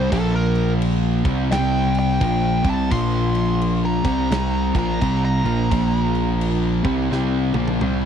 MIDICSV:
0, 0, Header, 1, 5, 480
1, 0, Start_track
1, 0, Tempo, 699301
1, 79, Time_signature, 4, 2, 24, 8
1, 5528, End_track
2, 0, Start_track
2, 0, Title_t, "Lead electric guitar"
2, 0, Program_c, 0, 29
2, 89, Note_on_c, 0, 69, 111
2, 240, Note_off_c, 0, 69, 0
2, 244, Note_on_c, 0, 70, 103
2, 493, Note_off_c, 0, 70, 0
2, 1045, Note_on_c, 0, 79, 104
2, 1352, Note_off_c, 0, 79, 0
2, 1368, Note_on_c, 0, 79, 95
2, 1829, Note_off_c, 0, 79, 0
2, 1850, Note_on_c, 0, 81, 96
2, 2000, Note_off_c, 0, 81, 0
2, 2004, Note_on_c, 0, 84, 105
2, 2622, Note_off_c, 0, 84, 0
2, 2644, Note_on_c, 0, 82, 92
2, 3263, Note_off_c, 0, 82, 0
2, 3286, Note_on_c, 0, 82, 95
2, 3593, Note_off_c, 0, 82, 0
2, 3603, Note_on_c, 0, 82, 110
2, 5015, Note_off_c, 0, 82, 0
2, 5528, End_track
3, 0, Start_track
3, 0, Title_t, "Distorted electric guitar"
3, 0, Program_c, 1, 30
3, 0, Note_on_c, 1, 48, 93
3, 0, Note_on_c, 1, 55, 91
3, 0, Note_on_c, 1, 60, 93
3, 70, Note_off_c, 1, 48, 0
3, 73, Note_off_c, 1, 55, 0
3, 75, Note_off_c, 1, 60, 0
3, 75, Note_on_c, 1, 46, 96
3, 82, Note_on_c, 1, 53, 94
3, 83, Note_on_c, 1, 58, 90
3, 845, Note_off_c, 1, 46, 0
3, 848, Note_off_c, 1, 53, 0
3, 849, Note_off_c, 1, 58, 0
3, 852, Note_on_c, 1, 48, 96
3, 857, Note_on_c, 1, 55, 100
3, 861, Note_on_c, 1, 60, 105
3, 1025, Note_off_c, 1, 48, 0
3, 1032, Note_off_c, 1, 55, 0
3, 1033, Note_on_c, 1, 48, 92
3, 1036, Note_off_c, 1, 60, 0
3, 1040, Note_on_c, 1, 55, 108
3, 1044, Note_on_c, 1, 60, 101
3, 1510, Note_off_c, 1, 48, 0
3, 1514, Note_off_c, 1, 55, 0
3, 1515, Note_on_c, 1, 46, 89
3, 1516, Note_off_c, 1, 60, 0
3, 1519, Note_on_c, 1, 53, 106
3, 1522, Note_on_c, 1, 58, 107
3, 1805, Note_off_c, 1, 46, 0
3, 1807, Note_off_c, 1, 53, 0
3, 1808, Note_off_c, 1, 58, 0
3, 1809, Note_on_c, 1, 48, 86
3, 1814, Note_on_c, 1, 55, 94
3, 1818, Note_on_c, 1, 60, 87
3, 1990, Note_off_c, 1, 48, 0
3, 1993, Note_off_c, 1, 55, 0
3, 1995, Note_off_c, 1, 60, 0
3, 1997, Note_on_c, 1, 46, 91
3, 2001, Note_on_c, 1, 53, 95
3, 2007, Note_on_c, 1, 58, 91
3, 2766, Note_off_c, 1, 46, 0
3, 2768, Note_off_c, 1, 53, 0
3, 2771, Note_off_c, 1, 58, 0
3, 2772, Note_on_c, 1, 48, 92
3, 2780, Note_on_c, 1, 55, 102
3, 2784, Note_on_c, 1, 60, 106
3, 2948, Note_off_c, 1, 48, 0
3, 2954, Note_off_c, 1, 55, 0
3, 2957, Note_on_c, 1, 48, 101
3, 2958, Note_off_c, 1, 60, 0
3, 2963, Note_on_c, 1, 55, 105
3, 2967, Note_on_c, 1, 60, 122
3, 3246, Note_off_c, 1, 48, 0
3, 3249, Note_off_c, 1, 55, 0
3, 3251, Note_off_c, 1, 60, 0
3, 3255, Note_on_c, 1, 46, 93
3, 3263, Note_on_c, 1, 53, 102
3, 3265, Note_on_c, 1, 58, 101
3, 3433, Note_off_c, 1, 46, 0
3, 3436, Note_on_c, 1, 48, 98
3, 3437, Note_off_c, 1, 53, 0
3, 3439, Note_off_c, 1, 58, 0
3, 3441, Note_on_c, 1, 55, 95
3, 3446, Note_on_c, 1, 60, 100
3, 3726, Note_off_c, 1, 48, 0
3, 3729, Note_off_c, 1, 55, 0
3, 3731, Note_off_c, 1, 60, 0
3, 3736, Note_on_c, 1, 46, 89
3, 3741, Note_on_c, 1, 53, 84
3, 3744, Note_on_c, 1, 58, 102
3, 3909, Note_off_c, 1, 46, 0
3, 3913, Note_off_c, 1, 53, 0
3, 3917, Note_on_c, 1, 46, 75
3, 3918, Note_off_c, 1, 58, 0
3, 3921, Note_on_c, 1, 53, 84
3, 3927, Note_on_c, 1, 58, 103
3, 4687, Note_off_c, 1, 46, 0
3, 4689, Note_off_c, 1, 53, 0
3, 4691, Note_on_c, 1, 48, 101
3, 4692, Note_off_c, 1, 58, 0
3, 4694, Note_on_c, 1, 55, 112
3, 4699, Note_on_c, 1, 60, 106
3, 4866, Note_off_c, 1, 48, 0
3, 4872, Note_off_c, 1, 55, 0
3, 4875, Note_on_c, 1, 48, 102
3, 4876, Note_off_c, 1, 60, 0
3, 4880, Note_on_c, 1, 55, 94
3, 4885, Note_on_c, 1, 60, 113
3, 5166, Note_off_c, 1, 48, 0
3, 5169, Note_off_c, 1, 55, 0
3, 5170, Note_on_c, 1, 46, 96
3, 5171, Note_off_c, 1, 60, 0
3, 5176, Note_on_c, 1, 53, 99
3, 5183, Note_on_c, 1, 58, 99
3, 5352, Note_off_c, 1, 46, 0
3, 5355, Note_off_c, 1, 53, 0
3, 5357, Note_on_c, 1, 48, 100
3, 5358, Note_off_c, 1, 58, 0
3, 5361, Note_on_c, 1, 55, 108
3, 5366, Note_on_c, 1, 60, 109
3, 5528, Note_off_c, 1, 48, 0
3, 5528, Note_off_c, 1, 55, 0
3, 5528, Note_off_c, 1, 60, 0
3, 5528, End_track
4, 0, Start_track
4, 0, Title_t, "Picked electric bass"
4, 0, Program_c, 2, 34
4, 0, Note_on_c, 2, 36, 100
4, 69, Note_off_c, 2, 36, 0
4, 81, Note_on_c, 2, 34, 102
4, 830, Note_off_c, 2, 34, 0
4, 862, Note_on_c, 2, 36, 97
4, 1029, Note_off_c, 2, 36, 0
4, 1040, Note_on_c, 2, 36, 94
4, 1492, Note_off_c, 2, 36, 0
4, 1517, Note_on_c, 2, 34, 104
4, 1794, Note_off_c, 2, 34, 0
4, 1819, Note_on_c, 2, 36, 102
4, 1988, Note_off_c, 2, 36, 0
4, 2000, Note_on_c, 2, 34, 108
4, 2749, Note_off_c, 2, 34, 0
4, 2778, Note_on_c, 2, 36, 103
4, 2948, Note_off_c, 2, 36, 0
4, 2955, Note_on_c, 2, 36, 84
4, 3233, Note_off_c, 2, 36, 0
4, 3261, Note_on_c, 2, 34, 104
4, 3430, Note_off_c, 2, 34, 0
4, 3443, Note_on_c, 2, 36, 108
4, 3717, Note_off_c, 2, 36, 0
4, 3736, Note_on_c, 2, 34, 99
4, 3907, Note_off_c, 2, 34, 0
4, 3924, Note_on_c, 2, 34, 104
4, 4672, Note_off_c, 2, 34, 0
4, 4701, Note_on_c, 2, 36, 109
4, 4870, Note_off_c, 2, 36, 0
4, 4883, Note_on_c, 2, 36, 93
4, 5158, Note_off_c, 2, 36, 0
4, 5176, Note_on_c, 2, 34, 100
4, 5348, Note_off_c, 2, 34, 0
4, 5363, Note_on_c, 2, 36, 104
4, 5528, Note_off_c, 2, 36, 0
4, 5528, End_track
5, 0, Start_track
5, 0, Title_t, "Drums"
5, 82, Note_on_c, 9, 36, 114
5, 84, Note_on_c, 9, 49, 94
5, 151, Note_off_c, 9, 36, 0
5, 153, Note_off_c, 9, 49, 0
5, 379, Note_on_c, 9, 49, 65
5, 447, Note_off_c, 9, 49, 0
5, 560, Note_on_c, 9, 49, 89
5, 629, Note_off_c, 9, 49, 0
5, 858, Note_on_c, 9, 36, 110
5, 860, Note_on_c, 9, 49, 67
5, 927, Note_off_c, 9, 36, 0
5, 928, Note_off_c, 9, 49, 0
5, 1040, Note_on_c, 9, 49, 92
5, 1046, Note_on_c, 9, 38, 113
5, 1108, Note_off_c, 9, 49, 0
5, 1115, Note_off_c, 9, 38, 0
5, 1336, Note_on_c, 9, 49, 72
5, 1405, Note_off_c, 9, 49, 0
5, 1516, Note_on_c, 9, 49, 91
5, 1518, Note_on_c, 9, 36, 110
5, 1585, Note_off_c, 9, 49, 0
5, 1587, Note_off_c, 9, 36, 0
5, 1815, Note_on_c, 9, 36, 115
5, 1816, Note_on_c, 9, 49, 73
5, 1884, Note_off_c, 9, 36, 0
5, 1884, Note_off_c, 9, 49, 0
5, 1999, Note_on_c, 9, 49, 94
5, 2000, Note_on_c, 9, 36, 110
5, 2068, Note_off_c, 9, 36, 0
5, 2068, Note_off_c, 9, 49, 0
5, 2298, Note_on_c, 9, 49, 67
5, 2367, Note_off_c, 9, 49, 0
5, 2482, Note_on_c, 9, 49, 82
5, 2550, Note_off_c, 9, 49, 0
5, 2778, Note_on_c, 9, 36, 115
5, 2780, Note_on_c, 9, 49, 69
5, 2846, Note_off_c, 9, 36, 0
5, 2849, Note_off_c, 9, 49, 0
5, 2961, Note_on_c, 9, 49, 92
5, 2968, Note_on_c, 9, 38, 118
5, 3030, Note_off_c, 9, 49, 0
5, 3036, Note_off_c, 9, 38, 0
5, 3259, Note_on_c, 9, 36, 115
5, 3263, Note_on_c, 9, 49, 73
5, 3328, Note_off_c, 9, 36, 0
5, 3332, Note_off_c, 9, 49, 0
5, 3442, Note_on_c, 9, 36, 105
5, 3443, Note_on_c, 9, 49, 87
5, 3510, Note_off_c, 9, 36, 0
5, 3512, Note_off_c, 9, 49, 0
5, 3744, Note_on_c, 9, 49, 59
5, 3812, Note_off_c, 9, 49, 0
5, 3922, Note_on_c, 9, 36, 112
5, 3925, Note_on_c, 9, 49, 88
5, 3991, Note_off_c, 9, 36, 0
5, 3993, Note_off_c, 9, 49, 0
5, 4221, Note_on_c, 9, 49, 57
5, 4289, Note_off_c, 9, 49, 0
5, 4401, Note_on_c, 9, 49, 85
5, 4470, Note_off_c, 9, 49, 0
5, 4699, Note_on_c, 9, 49, 60
5, 4700, Note_on_c, 9, 36, 114
5, 4768, Note_off_c, 9, 36, 0
5, 4768, Note_off_c, 9, 49, 0
5, 4887, Note_on_c, 9, 38, 64
5, 4956, Note_off_c, 9, 38, 0
5, 5177, Note_on_c, 9, 48, 88
5, 5246, Note_off_c, 9, 48, 0
5, 5269, Note_on_c, 9, 48, 82
5, 5338, Note_off_c, 9, 48, 0
5, 5362, Note_on_c, 9, 47, 98
5, 5431, Note_off_c, 9, 47, 0
5, 5528, End_track
0, 0, End_of_file